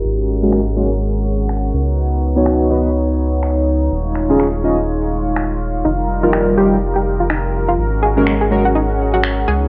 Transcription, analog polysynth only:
X:1
M:4/4
L:1/16
Q:"Swing 16ths" 1/4=124
K:Abmix
V:1 name="Analog polysynth"
z3 [A,DGB] z2 [A,DGB] z8 z | z3 [_CEGd]3 [CEG_c] z8 z | z3 [DFAe] z2 [DFAe] z8 z | z3 [=G,EFB]3 [G,EF=G] z8 z |
z3 [A,DGB] z2 [A,DGB] z8 z |]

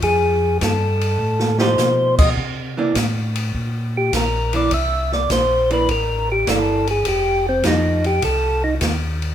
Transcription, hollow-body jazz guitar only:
X:1
M:4/4
L:1/8
Q:"Swing" 1/4=102
K:Fmix
V:1 name="Hollow-body jazz guitar"
[F,A,EG] z4 [F,A,EG]3 | z [=E,B,D] z4 z [E,B,D] | z3 [=E,B,D] z2 [E,B,D] z | z2 [F,A,EG] z4 z |]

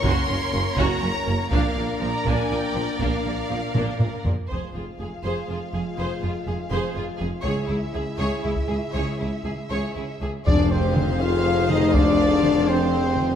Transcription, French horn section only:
X:1
M:6/8
L:1/8
Q:3/8=81
K:Fdor
V:1 name="French horn section"
[B,_D]6 | [B,D]6- | [B,D]4- [B,D] z | [A,F]6- |
[A,F]6 | [A,_F]6- | [A,_F]4- [A,F] z | D C2 F2 E |
D3 C3 |]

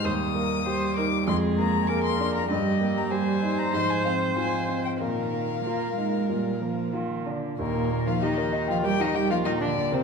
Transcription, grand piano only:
X:1
M:4/4
L:1/16
Q:1/4=97
K:Eb
V:1 name="Grand piano"
E,,2 B,2 G2 E2 F,,2 B,2 A2 D2 | G,,2 B,2 G2 E2 A,,2 C2 F2 C2 | B,,2 B,2 F2 E2 B,,2 B,2 F2 D2 | E,, B,, B, E G B e g B G E B, B,, B, B,, B, |]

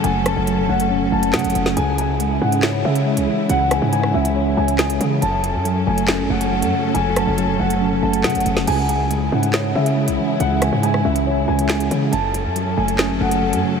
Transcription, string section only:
X:1
M:4/4
L:1/8
Q:1/4=139
K:C#m
V:1 name="String section"
[F,CA]8 | [C,G,E]8- | [C,G,E]8 | [F,CA]8- |
[F,CA]8 | [C,G,E]8- | [C,G,E]8 | [F,CA]8 |]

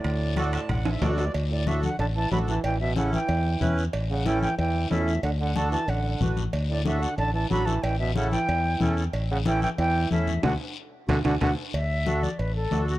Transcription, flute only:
X:1
M:4/4
L:1/8
Q:1/4=185
K:D
V:1 name="Flute"
d6 z2 | z d e f a a b a | g e f g4 z | z f g g g2 e2 |
f f a a f3 z | z d e f a a b a | g e f g4 z | z f g g g2 e2 |
f z3 f f f z | e3 d B A2 F |]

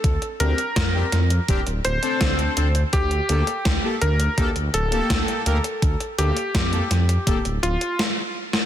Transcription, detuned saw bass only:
X:1
M:4/4
L:1/16
Q:1/4=83
K:Gdor
V:1 name="Detuned saw bass" clef=bass
D,, z D,, z F,, z F,, z D,,, D,,, D,,, z D,, z D,, z | D,, z D,, z D,, z D,, z D,, D,, D,,, z D,, z D,, z | D,, z D,, z F,, z F,, z D,,, D,,, D,,, z4 z |]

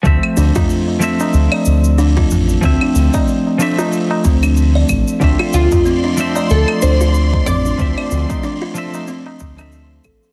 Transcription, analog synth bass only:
X:1
M:4/4
L:1/8
Q:"Swing 16ths" 1/4=93
K:Dm
V:1 name="Analog synth bass" clef=bass
D,, D,, z2 D,, D,,2 A,,, | D,, D,, z3 D,,2 A,,, | D,, D,, z2 D,, D,,2 A,,, | D,, D,, z3 D,,2 A,,, |]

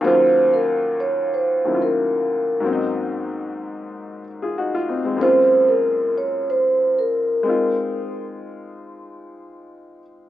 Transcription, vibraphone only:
X:1
M:4/4
L:1/16
Q:"Swing 16ths" 1/4=93
K:Ebdor
V:1 name="Vibraphone"
c3 B3 d2 c3 B4- B | z16 | c3 B3 d2 c3 B4- B | z16 |]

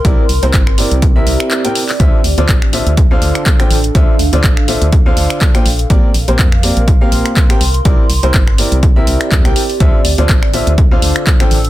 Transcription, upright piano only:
X:1
M:4/4
L:1/16
Q:"Swing 16ths" 1/4=123
K:Dm
V:1 name="Upright piano"
[C,CEBd] z2 [C,CEBc] z2 [C,CEBd] z2 [C,CEBe]4 [C,CEBg] z2 | [D,DFce] z2 [D,DFcd] z2 [D,DFce] z2 [D,DFcf]4 [D,DFcg] z2 | [D,DFce] z2 [D,DFcd] z2 [D,DFce] z2 [D,DFcf]4 [B,,DFcg] z2 | [B,,CGBd] z2 [B,,CGBc] z2 [B,,CGBd] z2 [B,,CGBf]4 [C,CGBg] z2 |
[C,CEBd] z2 [C,CEBc] z2 [C,CEBd] z2 [C,CEBe]4 [C,CEBg] z2 | [D,DFce] z2 [D,DFcd] z2 [D,DFce] z2 [D,DFcf]4 [D,DFcg] z2 |]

